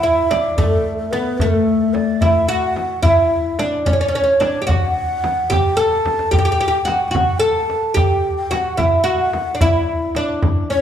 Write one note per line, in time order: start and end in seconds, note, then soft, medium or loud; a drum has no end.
0.03 0.29 E4 medium
0.03 0.57 E5 medium
0.30 0.59 D4 medium
0.30 tombak tek medium
0.30 frame drum medium
0.58 1.12 A3 medium
0.58 0.96 A4 medium
0.58 tombak dum medium
0.58 frame drum medium
0.98 1.13 A4 medium
1.11 1.41 B3 medium
1.11 1.39 B4 medium
1.11 tombak tek medium
1.11 frame drum medium
1.38 2.25 A3 medium
1.38 1.95 A4 medium
1.38 tombak dum medium
1.38 frame drum medium
1.94 2.23 D5 medium
1.94 tombak tek medium
1.94 frame drum medium
2.21 2.48 E4 medium
2.21 2.50 E5 medium
2.21 tombak dum medium
2.21 frame drum medium
2.48 3.00 F#4 loud
2.48 3.04 F#5 medium
2.76 tombak tek medium
2.76 frame drum medium
3.02 3.59 E4 loud
3.02 3.56 E5 medium
3.02 tombak dum medium
3.02 frame drum medium
3.59 3.86 D4 medium
3.59 tombak tek medium
3.59 frame drum medium
3.86 3.92 C#4 medium
3.86 4.71 C#5 medium
3.86 tombak dum medium
3.86 frame drum medium
3.93 4.00 C#4 medium
4.01 4.07 C#4 medium
4.08 4.14 C#4 medium
4.15 4.22 C#4 medium
4.24 4.32 C#4 medium
4.40 4.60 D4 medium
4.40 tombak tek medium
4.40 frame drum medium
4.62 4.66 G4 medium
4.67 5.49 F#4 medium
4.67 5.54 F#5 loud
4.67 frame drum medium
4.67 tombak dum medium
5.10 tombak ka soft
5.24 tombak tek medium
5.24 frame drum medium
5.50 5.76 G4 medium
5.50 5.82 G5 medium
5.50 tombak dum medium
5.50 frame drum medium
5.77 6.31 A4 loud
5.77 6.33 A5 medium
5.77 tombak tek medium
5.92 tombak ka medium
6.06 tombak tek medium
6.06 frame drum medium
6.19 tombak ka medium
6.31 6.37 G4 medium
6.31 7.08 G5 medium
6.31 frame drum medium
6.31 tombak dum medium
6.39 6.44 G4 medium
6.45 6.51 G4 medium
6.52 6.59 G4 medium
6.60 6.67 G4 medium
6.68 6.77 G4 medium
6.85 7.10 F#4 medium
6.85 tombak tek medium
6.85 frame drum medium
7.08 7.39 F#4 medium
7.08 7.17 G5 medium
7.15 7.44 F#5 medium
7.15 frame drum medium
7.15 tombak dum medium
7.40 7.94 A4 medium
7.40 7.98 A5 medium
7.70 tombak tek medium
7.94 8.50 G4 loud
7.94 8.37 G5 medium
7.94 frame drum medium
7.94 tombak dum medium
8.37 8.53 G5 medium
8.51 8.77 F#4 medium
8.51 8.81 F#5 medium
8.51 tombak tek medium
8.51 frame drum medium
8.77 9.03 E4 medium
8.77 9.09 E5 medium
8.77 frame drum medium
8.77 tombak dum medium
9.04 9.54 F#4 loud
9.04 9.61 F#5 medium
9.33 tombak tek medium
9.33 frame drum medium
9.55 9.61 D4 medium
9.61 10.16 E4 loud
9.61 10.12 E5 medium
9.61 frame drum medium
9.61 tombak dum medium
10.15 10.70 D4 medium
10.15 frame drum medium
10.42 frame drum medium
10.42 tombak dum medium
10.70 10.81 C#4 medium
10.70 10.81 C#5 medium